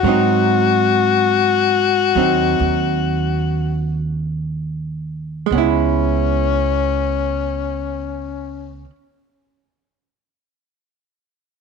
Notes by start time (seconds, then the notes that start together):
Already playing: F#4
0.03 G#2 F#3 C4
0.08 D#4
2.15 D#2 F#3 C4 D#4
2.60 D#2
5.46 G#3
5.50 C#2 B3 C#4
5.58 E4